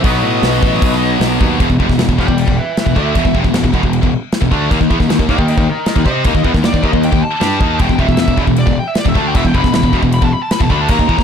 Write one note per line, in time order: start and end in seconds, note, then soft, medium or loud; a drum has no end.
0.03 0.21 B1 medium
0.03 1.39 B2 medium
0.03 1.40 F#3 medium
0.03 1.38 B3 medium
0.03 1.18 B4 medium
0.03 1.17 D#5 loud
0.03 kick loud
0.03 open hi-hat medium
0.22 0.39 A2 medium
0.43 0.59 B1 medium
0.43 snare loud
0.43 open hi-hat medium
0.63 0.79 A1 medium
0.63 kick loud
0.82 1.14 B1 medium
0.82 kick loud
0.82 open hi-hat medium
0.93 snare soft
1.20 1.37 B1 loud
1.20 snare loud
1.20 open hi-hat medium
1.39 1.57 D#2 loud
1.39 1.59 B2 medium
1.39 1.59 F#3 medium
1.39 1.58 B3 loud
1.39 kick loud
1.59 1.69 E1 medium
1.59 1.68 E2 medium
1.59 1.69 B2 loud
1.59 kick loud
1.59 crash medium
1.69 1.79 E1 medium
1.69 1.78 E2 medium
1.69 1.79 B2 medium
1.69 kick medium
1.79 1.89 F1 medium
1.79 1.88 F2 medium
1.79 1.88 C3 loud
1.79 kick medium
1.88 1.97 E1 medium
1.88 1.97 E2 medium
1.88 1.98 B2 medium
1.88 kick medium
1.88 snare soft
1.98 2.07 E1 medium
1.98 2.07 E2 medium
1.98 2.08 B2 medium
1.98 snare loud
1.98 crash medium
2.09 2.18 E1 medium
2.09 2.17 E2 medium
2.09 2.18 B2 medium
2.09 kick medium
2.18 2.27 E1 loud
2.18 2.27 E2 medium
2.18 2.27 B2 medium
2.18 2.38 D5 medium
2.18 2.38 G5 loud
2.18 kick medium
2.18 snare soft
2.28 2.46 E1 medium
2.28 2.44 E2 medium
2.28 2.44 B2 medium
2.28 kick medium
2.38 2.56 D5 medium
2.38 2.58 G5 medium
2.38 crash medium
2.47 2.57 E1 medium
2.47 2.57 E2 medium
2.47 2.57 B2 medium
2.47 kick loud
2.59 2.76 B4 medium
2.59 2.77 E5 medium
2.77 2.96 B4 medium
2.77 2.97 E5 loud
2.77 snare loud
2.77 crash medium
2.86 2.95 E1 medium
2.86 2.96 E2 medium
2.86 2.95 B2 medium
2.86 kick loud
2.96 3.14 D2 loud
2.96 3.15 D3 loud
2.96 3.15 A3 loud
2.96 3.15 D4 loud
2.96 3.35 E5 loud
2.96 kick medium
3.15 3.24 E1 loud
3.15 3.24 E2 medium
3.15 3.24 B2 medium
3.15 kick loud
3.15 crash medium
3.25 3.34 E1 medium
3.25 3.34 E2 medium
3.25 3.35 B2 medium
3.25 kick medium
3.35 3.44 F1 medium
3.35 3.44 F2 medium
3.35 3.44 C3 loud
3.35 kick medium
3.44 3.52 E1 medium
3.44 3.53 E2 medium
3.44 3.54 B2 medium
3.44 kick loud
3.53 3.62 E1 medium
3.53 3.63 E2 medium
3.53 3.64 B2 medium
3.53 snare loud
3.53 crash medium
3.64 3.73 E1 medium
3.64 3.73 E2 medium
3.64 3.73 B2 medium
3.64 kick medium
3.74 3.83 E1 medium
3.74 3.83 E2 medium
3.74 3.83 B2 loud
3.74 kick medium
3.83 4.02 E1 medium
3.83 3.99 E2 medium
3.83 4.00 B2 medium
3.83 kick medium
3.93 crash medium
4.03 4.12 E1 medium
4.03 4.13 E2 medium
4.03 4.13 B2 medium
4.03 kick medium
4.32 snare loud
4.32 crash medium
4.42 4.51 E1 medium
4.42 4.51 E2 medium
4.42 4.50 B2 medium
4.42 kick medium
4.51 4.69 D2 loud
4.51 4.70 D3 loud
4.51 4.70 A3 loud
4.51 4.71 D4 loud
4.51 kick medium
4.70 4.80 D#2 medium
4.70 4.79 D#3 loud
4.70 4.79 A#3 loud
4.70 kick loud
4.70 crash medium
4.80 4.90 D#2 medium
4.80 4.90 D#3 medium
4.80 4.90 A#3 medium
4.80 kick medium
4.90 4.99 E2 loud
4.90 4.99 E3 loud
4.90 5.00 B3 loud
4.90 kick medium
5.00 5.08 D#2 medium
5.00 5.08 D#3 medium
5.00 5.09 A#3 medium
5.00 kick medium
5.00 snare soft
5.08 5.18 D#2 medium
5.08 5.18 D#3 medium
5.08 5.19 A#3 medium
5.08 snare loud
5.08 crash medium
5.19 5.28 D#2 medium
5.19 5.28 D#3 medium
5.19 5.29 A#3 medium
5.19 kick medium
5.29 5.38 D#2 medium
5.29 5.38 D#3 medium
5.29 5.38 A#3 loud
5.29 5.48 D#5 medium
5.29 5.49 G5 loud
5.29 kick medium
5.29 snare soft
5.38 5.57 D#2 medium
5.38 5.54 D#3 medium
5.38 5.54 A#3 medium
5.38 kick medium
5.48 5.67 D#5 medium
5.48 5.68 G5 medium
5.48 crash medium
5.57 5.67 D#2 medium
5.57 5.68 D#3 medium
5.57 5.68 A#3 medium
5.57 kick loud
5.69 5.86 A#4 medium
5.69 5.87 D#5 medium
5.86 6.06 A#4 medium
5.86 6.06 D#5 medium
5.86 snare loud
5.86 crash medium
5.96 6.06 D#2 medium
5.96 6.06 D#3 medium
5.96 6.06 A#3 medium
5.96 kick loud
6.06 6.24 C3 medium
6.06 6.25 C4 medium
6.06 6.25 G4 medium
6.06 6.26 C5 loud
6.06 6.44 D#5 loud
6.06 kick loud
6.24 6.34 D#2 loud
6.24 6.33 D#3 medium
6.24 6.34 A#3 loud
6.24 kick loud
6.24 crash medium
6.34 6.44 D#2 medium
6.34 6.44 D#3 medium
6.34 6.45 A#3 medium
6.34 kick medium
6.44 6.54 E2 loud
6.44 6.53 E3 loud
6.44 6.54 B3 loud
6.44 kick medium
6.54 6.63 D#2 medium
6.54 6.62 D#3 medium
6.54 6.62 A#3 medium
6.54 kick medium
6.54 snare soft
6.63 6.73 D#2 medium
6.63 6.71 D#3 medium
6.63 6.72 A#3 medium
6.63 6.84 D5 loud
6.63 snare loud
6.63 crash medium
6.73 6.83 D#2 medium
6.73 6.81 D#3 medium
6.73 6.82 A#3 medium
6.73 kick medium
6.83 6.92 D#2 medium
6.83 6.91 D#3 medium
6.83 6.91 A#3 loud
6.83 7.04 D#5 loud
6.83 kick medium
6.92 7.11 D#2 medium
6.92 7.08 D#3 medium
6.92 7.08 A#3 medium
6.92 kick medium
7.03 7.24 G5 loud
7.03 crash medium
7.11 7.22 D#2 medium
7.11 7.22 D#3 medium
7.11 7.22 A#3 medium
7.11 kick medium
7.24 7.79 A5 medium
7.40 7.60 G2 loud
7.40 7.60 G3 loud
7.40 7.60 D4 medium
7.40 7.60 G4 loud
7.40 snare loud
7.40 crash medium
7.59 7.79 D#2 loud
7.59 7.79 D#3 loud
7.59 7.79 A#3 loud
7.59 7.80 D#4 loud
7.59 kick loud
7.79 7.89 E1 medium
7.79 7.88 E2 medium
7.79 7.88 B2 medium
7.79 8.00 G5 loud
7.79 kick loud
7.79 crash medium
7.89 7.98 E1 medium
7.89 7.98 E2 medium
7.89 7.99 B2 medium
7.89 kick medium
7.98 8.08 F1 loud
7.98 8.07 F2 medium
7.98 8.08 C3 loud
7.98 8.18 E5 loud
7.98 kick medium
8.08 8.18 E1 medium
8.08 8.17 E2 medium
8.08 8.17 B2 medium
8.08 kick loud
8.17 8.27 E1 medium
8.17 8.27 E2 medium
8.17 8.27 B2 medium
8.17 8.38 E5 loud
8.17 snare loud
8.17 crash medium
8.28 8.37 E1 medium
8.28 8.35 E2 medium
8.28 8.36 B2 medium
8.28 kick medium
8.37 8.47 E1 medium
8.37 8.45 E2 loud
8.37 8.46 B2 loud
8.37 kick medium
8.46 8.66 E1 medium
8.46 8.63 E2 medium
8.46 8.63 B2 medium
8.46 kick medium
8.56 8.77 D5 loud
8.56 crash medium
8.66 8.76 E1 medium
8.66 8.76 E2 medium
8.66 8.76 B2 medium
8.66 kick loud
8.79 8.88 G5 medium
8.88 8.96 E5 loud
8.95 9.08 D5 loud
8.95 snare loud
8.95 crash medium
9.06 9.15 E1 medium
9.06 9.15 E2 medium
9.06 9.14 B2 medium
9.06 9.16 E5 medium
9.06 kick medium
9.15 9.34 D2 loud
9.15 9.34 D3 loud
9.15 9.34 A3 loud
9.15 9.34 D4 loud
9.15 9.26 A5 loud
9.15 kick medium
9.27 9.36 G5 medium
9.35 9.44 E1 loud
9.35 9.44 E2 medium
9.35 9.44 B2 loud
9.35 9.46 E5 loud
9.35 kick loud
9.35 crash medium
9.45 9.54 E1 medium
9.45 9.54 E2 medium
9.45 9.54 B2 medium
9.45 9.55 G5 loud
9.45 kick medium
9.54 9.63 F1 loud
9.54 9.63 F2 loud
9.54 9.64 C3 loud
9.54 9.73 B5 medium
9.54 kick medium
9.64 9.73 E1 medium
9.64 9.72 E2 medium
9.64 9.73 B2 medium
9.64 kick loud
9.64 snare soft
9.74 9.83 E1 medium
9.74 9.82 E2 medium
9.74 9.83 B2 medium
9.74 9.93 B5 loud
9.74 snare loud
9.74 crash medium
9.83 9.92 E1 medium
9.83 9.92 E2 medium
9.83 9.93 B2 medium
9.83 kick medium
9.93 10.02 E1 loud
9.93 10.02 E2 medium
9.93 10.02 B2 medium
9.93 kick medium
10.03 10.21 E1 medium
10.03 10.18 E2 medium
10.03 10.18 B2 medium
10.03 kick medium
10.12 10.23 B5 loud
10.12 crash medium
10.22 10.31 E1 medium
10.22 10.31 E2 medium
10.22 10.32 B2 medium
10.22 10.33 A5 loud
10.22 kick loud
10.33 10.41 B5 loud
10.43 10.51 A5 medium
10.51 10.61 B5 loud
10.51 snare loud
10.51 crash medium
10.60 10.70 E1 medium
10.60 10.70 E2 medium
10.60 10.69 B2 medium
10.60 10.71 A5 medium
10.60 kick medium
10.70 10.88 D2 loud
10.70 10.89 D3 loud
10.70 10.89 A3 medium
10.70 10.89 D4 loud
10.70 10.81 B5 loud
10.70 kick medium
10.81 10.90 A5 loud
10.88 10.98 D#2 medium
10.88 10.98 D#3 medium
10.88 10.98 A#3 loud
10.88 11.24 A#5 loud
10.88 kick loud
10.88 crash medium
10.99 11.08 D#2 medium
10.99 11.07 D#3 medium
10.99 11.08 A#3 medium
10.99 kick medium
11.08 11.18 E2 loud
11.08 11.17 E3 loud
11.08 11.18 B3 loud
11.08 kick medium
11.18 11.24 D#2 medium
11.18 11.24 D#3 medium
11.18 11.24 A#3 medium
11.18 kick medium
11.18 snare soft